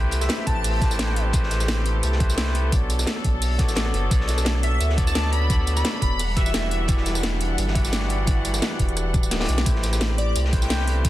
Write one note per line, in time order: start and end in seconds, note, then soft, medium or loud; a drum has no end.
0.00 0.28 C2 medium
0.00 0.81 A3 medium
0.00 2.68 C4 medium
0.00 0.81 E4 medium
0.00 0.81 G4 medium
0.00 2.68 G4 medium
0.00 0.82 B4 medium
0.00 0.82 C5 loud
0.00 0.62 B5 medium
0.11 closed hi-hat medium
0.11 tambourine medium
0.21 0.42 E5 medium
0.21 cross-stick soft
0.21 snare soft
0.21 tambourine medium
0.29 snare loud
0.29 closed hi-hat medium
0.29 tambourine soft
0.39 cross-stick soft
0.46 1.32 A1 loud
0.46 0.80 A5 medium
0.46 kick medium
0.46 closed hi-hat medium
0.64 6.15 A4 loud
0.64 closed hi-hat loud
0.64 open hi-hat medium
0.64 tambourine medium
0.81 0.92 A3 medium
0.81 0.92 E4 medium
0.81 0.92 G4 medium
0.81 0.93 B4 medium
0.81 0.93 C5 loud
0.81 1.16 A5 medium
0.81 kick loud
0.81 snare soft
0.81 closed hi-hat medium
0.81 tambourine soft
0.91 snare soft
0.91 tambourine medium
0.98 1.31 A3 medium
0.98 1.31 E4 medium
0.98 1.32 G4 medium
0.98 1.32 B4 medium
0.98 1.32 C5 loud
0.98 snare loud
0.98 closed hi-hat medium
0.98 closed hi-hat loud
0.98 tambourine soft
1.08 cross-stick soft
1.16 closed hi-hat medium
1.32 2.02 A1 loud
1.32 2.18 A3 medium
1.32 2.18 E4 medium
1.32 2.18 G4 medium
1.32 2.19 B4 medium
1.32 2.19 C5 loud
1.32 kick loud
1.32 closed hi-hat medium
1.32 tambourine soft
1.43 snare soft
1.51 snare soft
1.51 closed hi-hat medium
1.51 tambourine soft
1.60 cross-stick soft
1.60 snare soft
1.60 tambourine medium
1.68 snare loud
1.68 closed hi-hat medium
1.68 closed hi-hat loud
1.68 tambourine soft
1.77 cross-stick soft
1.86 closed hi-hat medium
2.03 2.71 C2 medium
2.03 closed hi-hat loud
2.03 closed hi-hat medium
2.03 tambourine soft
2.12 snare soft
2.20 2.31 A3 medium
2.20 2.31 E4 medium
2.20 2.31 G4 medium
2.20 2.31 B4 medium
2.20 2.32 C5 loud
2.20 kick loud
2.20 closed hi-hat medium
2.20 tambourine soft
2.29 snare soft
2.29 tambourine medium
2.37 2.70 A3 medium
2.37 2.70 E4 medium
2.37 2.70 G4 medium
2.37 2.71 B4 medium
2.37 2.71 C5 medium
2.37 snare loud
2.37 closed hi-hat medium
2.37 tambourine soft
2.47 snare soft
2.55 closed hi-hat medium
2.71 3.06 B1 medium
2.71 3.56 B3 medium
2.71 6.16 D4 medium
2.71 3.57 A4 medium
2.71 3.58 D5 loud
2.71 kick loud
2.71 closed hi-hat medium
2.71 tambourine soft
2.90 closed hi-hat medium
2.90 tambourine soft
2.99 cross-stick soft
2.99 snare soft
2.99 tambourine medium
3.07 snare loud
3.07 closed hi-hat medium
3.16 cross-stick soft
3.24 3.59 B1 loud
3.24 kick medium
3.24 closed hi-hat medium
3.42 closed hi-hat medium
3.42 open hi-hat medium
3.42 tambourine medium
3.58 3.92 A1 medium
3.58 3.70 B3 medium
3.58 3.70 F#4 medium
3.58 3.70 A4 medium
3.58 3.70 C#5 medium
3.58 3.70 D5 medium
3.58 kick loud
3.58 snare soft
3.58 closed hi-hat medium
3.58 tambourine soft
3.68 snare soft
3.68 tambourine medium
3.75 4.09 B3 medium
3.75 4.09 F#4 medium
3.75 4.09 A4 medium
3.75 4.09 C#5 medium
3.75 4.09 D5 loud
3.75 snare loud
3.75 closed hi-hat medium
3.75 tambourine soft
3.86 cross-stick soft
3.94 4.10 F#1 loud
3.94 closed hi-hat medium
4.10 4.79 B1 loud
4.10 4.95 B3 medium
4.10 4.95 F#4 medium
4.10 4.96 A4 medium
4.10 4.96 C#5 medium
4.10 4.97 D5 medium
4.10 kick loud
4.10 closed hi-hat loud
4.10 closed hi-hat medium
4.10 tambourine soft
4.20 snare soft
4.28 snare soft
4.28 closed hi-hat medium
4.28 tambourine medium
4.37 cross-stick soft
4.37 snare soft
4.37 tambourine medium
4.45 snare loud
4.45 closed hi-hat medium
4.45 tambourine soft
4.55 cross-stick soft
4.63 4.84 E5 medium
4.63 closed hi-hat medium
4.81 5.83 D2 medium
4.81 closed hi-hat medium
4.81 tambourine medium
4.89 snare soft
4.97 5.08 B3 medium
4.97 5.09 F#4 medium
4.97 5.09 A4 medium
4.97 5.09 C#5 medium
4.97 5.09 D5 loud
4.97 kick loud
4.97 closed hi-hat medium
4.97 tambourine soft
5.07 5.27 A5 medium
5.07 snare soft
5.07 tambourine medium
5.15 5.47 B3 medium
5.15 5.48 F#4 medium
5.15 5.48 A4 medium
5.15 5.48 C#5 medium
5.15 5.48 D5 loud
5.15 snare loud
5.15 closed hi-hat medium
5.15 tambourine medium
5.24 snare soft
5.32 5.53 B5 loud
5.32 closed hi-hat medium
5.48 6.17 B3 medium
5.48 6.18 F#4 medium
5.48 6.18 A4 medium
5.48 6.18 C#5 medium
5.48 6.19 D5 loud
5.48 kick loud
5.48 closed hi-hat medium
5.48 tambourine medium
5.67 closed hi-hat medium
5.67 tambourine medium
5.76 5.97 B5 loud
5.76 cross-stick soft
5.76 snare soft
5.76 tambourine medium
5.85 snare loud
5.85 closed hi-hat medium
5.85 tambourine soft
5.94 cross-stick soft
6.01 6.87 E1 loud
6.01 6.23 B5 medium
6.01 kick medium
6.01 closed hi-hat medium
6.19 9.63 G3 medium
6.19 9.63 D4 medium
6.19 9.63 F#5 medium
6.19 closed hi-hat medium
6.19 open hi-hat medium
6.19 tambourine medium
6.36 6.47 E3 medium
6.36 6.47 E4 medium
6.36 6.48 F#4 medium
6.36 6.48 G4 medium
6.36 6.85 E5 medium
6.36 6.48 F#5 loud
6.36 kick loud
6.36 snare soft
6.36 closed hi-hat medium
6.36 tambourine soft
6.46 snare soft
6.46 tambourine medium
6.53 6.86 E3 medium
6.53 6.86 E4 medium
6.53 6.87 F#4 medium
6.53 6.87 G4 medium
6.53 6.87 D5 medium
6.53 snare loud
6.53 closed hi-hat loud
6.53 closed hi-hat medium
6.53 tambourine medium
6.63 cross-stick soft
6.71 closed hi-hat medium
6.87 7.57 E1 loud
6.87 7.73 E3 medium
6.87 7.73 E4 medium
6.87 7.73 F#4 medium
6.87 7.74 G4 medium
6.87 7.74 D5 loud
6.87 kick loud
6.87 closed hi-hat medium
6.87 tambourine medium
6.97 snare soft
7.06 snare soft
7.06 closed hi-hat medium
7.06 tambourine medium
7.15 cross-stick soft
7.15 snare soft
7.15 tambourine medium
7.23 snare loud
7.23 closed hi-hat loud
7.23 closed hi-hat medium
7.33 cross-stick soft
7.41 closed hi-hat medium
7.58 8.61 G1 medium
7.58 closed hi-hat medium
7.58 closed hi-hat loud
7.58 tambourine medium
7.68 snare soft
7.74 7.86 E3 medium
7.74 7.86 E4 medium
7.74 7.86 F#4 medium
7.74 7.86 G4 medium
7.74 7.86 F#5 loud
7.74 kick loud
7.74 closed hi-hat medium
7.74 tambourine soft
7.85 snare soft
7.85 tambourine medium
7.92 8.25 E3 medium
7.92 8.25 E4 medium
7.92 8.25 F#4 medium
7.92 8.26 G4 medium
7.92 8.26 D5 loud
7.92 snare loud
7.92 closed hi-hat medium
7.92 tambourine medium
8.02 snare soft
8.09 closed hi-hat medium
8.26 9.11 E3 medium
8.26 9.12 E4 medium
8.26 9.12 F#4 medium
8.26 9.12 G4 medium
8.26 9.13 D5 loud
8.26 kick loud
8.26 closed hi-hat loud
8.26 closed hi-hat medium
8.26 tambourine medium
8.45 closed hi-hat medium
8.45 tambourine medium
8.54 cross-stick soft
8.54 snare soft
8.54 closed hi-hat soft
8.54 tambourine medium
8.62 snare loud
8.62 closed hi-hat medium
8.62 closed hi-hat loud
8.71 cross-stick soft
8.79 9.14 E1 loud
8.79 kick medium
8.79 closed hi-hat medium
8.89 closed hi-hat soft
8.97 cross-stick soft
8.97 closed hi-hat loud
8.97 tambourine medium
9.14 9.47 D1 medium
9.14 kick loud
9.14 closed hi-hat medium
9.14 tambourine soft
9.23 tambourine medium
9.31 snare medium
9.31 closed hi-hat loud
9.31 closed hi-hat medium
9.31 tambourine medium
9.40 9.64 E3 medium
9.40 9.64 E4 medium
9.40 9.64 F#4 medium
9.40 9.64 G4 medium
9.40 9.64 D5 loud
9.40 snare medium
9.40 closed hi-hat medium
9.44 snare medium
9.44 closed hi-hat medium
9.49 9.65 B1 loud
9.49 closed hi-hat medium
9.49 tambourine soft
9.58 snare medium
9.58 closed hi-hat soft
9.65 10.34 A1 loud
9.65 10.50 A3 medium
9.65 11.09 C4 medium
9.65 10.50 E4 medium
9.65 10.51 G4 medium
9.65 11.09 G4 medium
9.65 10.51 B4 medium
9.65 10.51 C5 loud
9.65 kick loud
9.65 closed hi-hat medium
9.65 closed hi-hat loud
9.65 tambourine soft
9.75 snare soft
9.83 snare soft
9.83 closed hi-hat medium
9.83 tambourine medium
9.93 cross-stick soft
9.93 snare soft
9.93 tambourine medium
10.01 snare loud
10.01 closed hi-hat medium
10.01 tambourine soft
10.10 cross-stick soft
10.18 10.39 D5 loud
10.18 closed hi-hat medium
10.36 11.09 C2 medium
10.36 closed hi-hat loud
10.36 closed hi-hat medium
10.36 tambourine medium
10.45 snare soft
10.52 10.63 A3 medium
10.52 10.63 E4 medium
10.52 10.64 G4 medium
10.52 10.64 B4 medium
10.52 10.64 C5 loud
10.52 kick loud
10.52 closed hi-hat medium
10.52 tambourine soft
10.62 10.82 G5 medium
10.62 snare soft
10.62 tambourine medium
10.69 11.02 A3 medium
10.69 11.03 E4 medium
10.69 11.03 G4 medium
10.69 11.03 B4 medium
10.69 11.03 C5 loud
10.69 snare loud
10.69 closed hi-hat medium
10.69 closed hi-hat loud
10.69 tambourine soft
10.80 snare soft
10.88 closed hi-hat medium
11.03 11.09 A3 medium
11.03 11.09 E4 medium
11.03 11.09 G4 medium
11.03 11.09 B4 medium
11.03 11.09 C5 loud
11.03 kick loud
11.03 closed hi-hat loud
11.03 closed hi-hat medium
11.03 tambourine soft